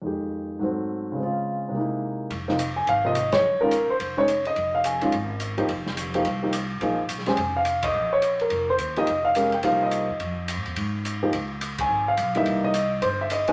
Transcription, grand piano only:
X:1
M:4/4
L:1/8
Q:"Swing" 1/4=213
K:Fm
V:1 name="Grand piano"
z8 | z8 | z3 a f e2 d- | d B2 c2 d2 e- |
e f a2 z4 | z8 | z3 a2 f2 e- | e d2 B2 c2 e- |
e f2 g f e3- | e3 z4 z | z3 a2 f2 =e- | =e ^d2 z c e d a |]
V:2 name="Grand piano"
[F,,E,A,G]4 [A,,_G,=A,C]4 | [D,A,CF]4 [C,^G,B,^D=E]4 | z [C,F,B,E] z3 [C,F,B,F] z2 | z [E,A,DF] z3 [E,A,DE] z2 |
z3 [E,A,DF] z3 [F,B,EG] | z3 [F,B,EG] z [F,B,EG] z2 | [F,B,EA] z2 [A,DGc] z4 | z6 z [F,B,EG] |
z2 [A,DGB] z [F,B,EG]3 z | z6 z [F,B,EG] | z6 z [=E,G,B,_E]- | [=E,G,B,_E]2 z4 z [C,F,B,^D] |]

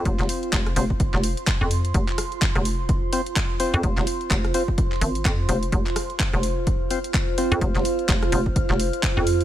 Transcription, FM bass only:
X:1
M:4/4
L:1/16
Q:"Swing 16ths" 1/4=127
K:Cphr
V:1 name="FM bass" clef=bass
F,,, F,,, z2 F,,,2 F,,,3 F,,,2 z2 F,,3 | F,,, z4 F,,,4 z6 F,, | F,,, F,,, z2 F,,,2 z4 A,,,2 F,,2 F,,,2 | F,,, z4 F,,,4 z6 F,, |
F,,, F,,, z2 F,,,2 F,,,3 F,,,2 z2 F,,3 |]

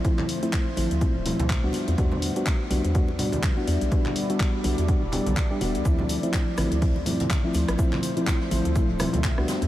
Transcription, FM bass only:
X:1
M:4/4
L:1/16
Q:"Swing 16ths" 1/4=124
K:Ddor
V:1 name="FM bass" clef=bass
z6 A,,, D,, z D,,, z D,, z C,, z E,, | E,,3 z3 B,,, E,,3 A,,3 E,,, E,, B,,, | z6 B,,, E,, z E,,, z B,,, z2 E,,, D,, | D,,3 z3 A,,, D,,3 G,,3 D,,, D,, A,,, |
z6 A,,, D,, z D,,, z D,, z C,, z E,, |]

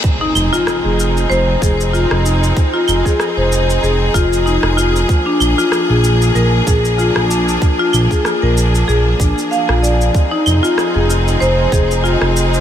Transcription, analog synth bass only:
X:1
M:4/4
L:1/16
Q:"Swing 16ths" 1/4=95
K:Fdor
V:1 name="Analog synth bass" clef=bass
z2 F,,, z2 F,,,3 F,,,2 F,,,3 F,,,3 | z2 F,,, z2 F,,,3 F,,,2 F,,,3 F,,,3 | z2 B,,, z2 B,,,3 B,,,2 B,,,3 B,,,3 | z2 B,,, z2 B,,,3 B,,,2 B,,, z2 B,,,3 |
z2 F,,, z2 F,,,3 F,,,2 F,,,3 F,,,3 |]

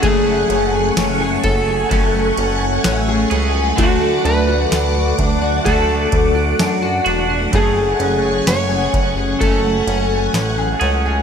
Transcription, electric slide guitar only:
X:1
M:4/4
L:1/8
Q:1/4=64
K:F#m
V:1 name="Electric slide guitar"
G2 z A4 z | F B2 z A3 z | G2 c2 A3 z |]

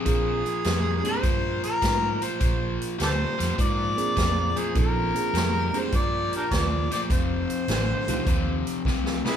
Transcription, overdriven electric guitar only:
X:1
M:4/4
L:1/8
Q:"Swing" 1/4=102
K:Bb
V:1 name="Overdriven electric guitar" clef=bass
[B,,F,]2 [B,,G,] [B,,G,] [B,,F,]2 [B,,F,] [B,,F,] | [B,,F,]2 [B,,G,] [B,,G,] [B,,F,]2 [B,,F,] [B,,F,] | [B,,F,]2 [B,,G,] [B,,G,] [B,,F,]2 [B,,F,] [B,,F,] | [F,,C,]2 [F,,D,] [F,,D,] [F,,C,]2 [F,,C,] [F,,C,] |]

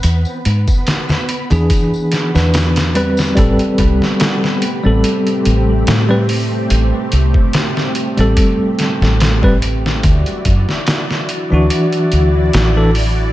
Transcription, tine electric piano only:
X:1
M:4/4
L:1/16
Q:"Swing 16ths" 1/4=72
K:Ephr
V:1 name="Tine electric piano"
z6 z [E,D^G]4 [E,DB]3 [=G,CB]2 | [K:Ador] [G,CA]6 z [G,CA]6 [G,CB] z2 | z6 z [G,CA]6 [G,CB] z2 | z6 z [E,DF]6 [E,DA] z2 |]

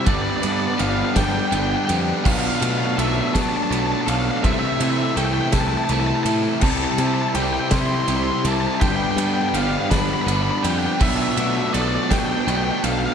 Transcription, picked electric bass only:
X:1
M:6/8
L:1/8
Q:3/8=55
K:Gmix
V:1 name="Picked electric bass" clef=bass
G,,, G,, G,,, G,,, G,,, F,, | B,,, B,, B,,, B,, B,,, B,,, | C,, C, C,, C,, C,, A,, | C,, C, C,, C, C,, C,, |
G,,, G,, G,,, G,,, G,,, F,, | B,,, B,, B,,, B,, B,,, B,,, |]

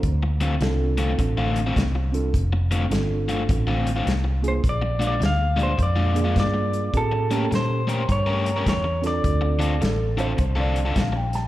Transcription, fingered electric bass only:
X:1
M:4/4
L:1/8
Q:"Swing" 1/4=104
K:Dm
V:1 name="Fingered electric bass" clef=bass
D,,2 C,,2 A,,,2 C,,2 | F,,,2 G,,,2 A,,,2 C,,2 | B,,,2 D,,2 F,,2 G,,2 | A,,2 B,,2 G,,2 E,,2 |
D,,2 A,,,2 C,,2 B,,,2 |]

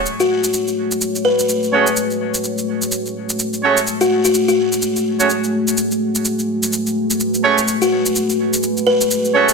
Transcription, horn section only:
X:1
M:4/4
L:1/16
Q:"Swing 16ths" 1/4=126
K:F#m
V:1 name="Horn section"
z12 z2 [A,CFGc] z | z12 z2 [A,CFGc] z | z8 z3 [A,CFGc] z4 | z12 z2 [A,CFGc] z |
z12 z2 [A,CFGc] z |]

